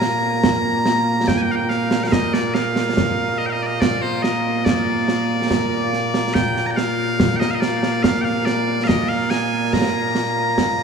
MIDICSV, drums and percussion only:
0, 0, Header, 1, 2, 480
1, 0, Start_track
1, 0, Key_signature, -2, "major"
1, 0, Tempo, 845070
1, 1209, Time_signature, 3, 2, 24, 8
1, 6153, End_track
2, 0, Start_track
2, 0, Title_t, "Drums"
2, 9, Note_on_c, 9, 38, 82
2, 66, Note_off_c, 9, 38, 0
2, 247, Note_on_c, 9, 35, 60
2, 247, Note_on_c, 9, 38, 101
2, 304, Note_off_c, 9, 35, 0
2, 304, Note_off_c, 9, 38, 0
2, 486, Note_on_c, 9, 38, 83
2, 543, Note_off_c, 9, 38, 0
2, 727, Note_on_c, 9, 35, 68
2, 727, Note_on_c, 9, 38, 100
2, 784, Note_off_c, 9, 35, 0
2, 784, Note_off_c, 9, 38, 0
2, 967, Note_on_c, 9, 38, 32
2, 1024, Note_off_c, 9, 38, 0
2, 1085, Note_on_c, 9, 38, 91
2, 1142, Note_off_c, 9, 38, 0
2, 1206, Note_on_c, 9, 35, 61
2, 1206, Note_on_c, 9, 38, 109
2, 1263, Note_off_c, 9, 35, 0
2, 1263, Note_off_c, 9, 38, 0
2, 1327, Note_on_c, 9, 38, 74
2, 1384, Note_off_c, 9, 38, 0
2, 1447, Note_on_c, 9, 38, 75
2, 1503, Note_off_c, 9, 38, 0
2, 1568, Note_on_c, 9, 38, 70
2, 1625, Note_off_c, 9, 38, 0
2, 1689, Note_on_c, 9, 35, 60
2, 1689, Note_on_c, 9, 38, 98
2, 1745, Note_off_c, 9, 35, 0
2, 1745, Note_off_c, 9, 38, 0
2, 2168, Note_on_c, 9, 35, 57
2, 2168, Note_on_c, 9, 38, 103
2, 2225, Note_off_c, 9, 35, 0
2, 2225, Note_off_c, 9, 38, 0
2, 2408, Note_on_c, 9, 38, 74
2, 2465, Note_off_c, 9, 38, 0
2, 2648, Note_on_c, 9, 35, 59
2, 2648, Note_on_c, 9, 38, 94
2, 2705, Note_off_c, 9, 35, 0
2, 2705, Note_off_c, 9, 38, 0
2, 2887, Note_on_c, 9, 38, 68
2, 2944, Note_off_c, 9, 38, 0
2, 3128, Note_on_c, 9, 35, 55
2, 3128, Note_on_c, 9, 38, 96
2, 3184, Note_off_c, 9, 35, 0
2, 3184, Note_off_c, 9, 38, 0
2, 3370, Note_on_c, 9, 38, 32
2, 3426, Note_off_c, 9, 38, 0
2, 3489, Note_on_c, 9, 38, 80
2, 3546, Note_off_c, 9, 38, 0
2, 3608, Note_on_c, 9, 35, 61
2, 3608, Note_on_c, 9, 38, 94
2, 3665, Note_off_c, 9, 35, 0
2, 3665, Note_off_c, 9, 38, 0
2, 3729, Note_on_c, 9, 38, 30
2, 3786, Note_off_c, 9, 38, 0
2, 3848, Note_on_c, 9, 38, 75
2, 3905, Note_off_c, 9, 38, 0
2, 4088, Note_on_c, 9, 35, 69
2, 4088, Note_on_c, 9, 38, 102
2, 4145, Note_off_c, 9, 35, 0
2, 4145, Note_off_c, 9, 38, 0
2, 4211, Note_on_c, 9, 38, 79
2, 4268, Note_off_c, 9, 38, 0
2, 4329, Note_on_c, 9, 38, 84
2, 4386, Note_off_c, 9, 38, 0
2, 4448, Note_on_c, 9, 38, 68
2, 4505, Note_off_c, 9, 38, 0
2, 4567, Note_on_c, 9, 35, 58
2, 4567, Note_on_c, 9, 38, 101
2, 4624, Note_off_c, 9, 35, 0
2, 4624, Note_off_c, 9, 38, 0
2, 4809, Note_on_c, 9, 38, 74
2, 4866, Note_off_c, 9, 38, 0
2, 5050, Note_on_c, 9, 35, 57
2, 5050, Note_on_c, 9, 38, 90
2, 5106, Note_off_c, 9, 35, 0
2, 5106, Note_off_c, 9, 38, 0
2, 5288, Note_on_c, 9, 38, 69
2, 5345, Note_off_c, 9, 38, 0
2, 5527, Note_on_c, 9, 35, 56
2, 5527, Note_on_c, 9, 38, 88
2, 5584, Note_off_c, 9, 35, 0
2, 5584, Note_off_c, 9, 38, 0
2, 5766, Note_on_c, 9, 38, 65
2, 5822, Note_off_c, 9, 38, 0
2, 6009, Note_on_c, 9, 35, 50
2, 6009, Note_on_c, 9, 38, 88
2, 6065, Note_off_c, 9, 35, 0
2, 6065, Note_off_c, 9, 38, 0
2, 6153, End_track
0, 0, End_of_file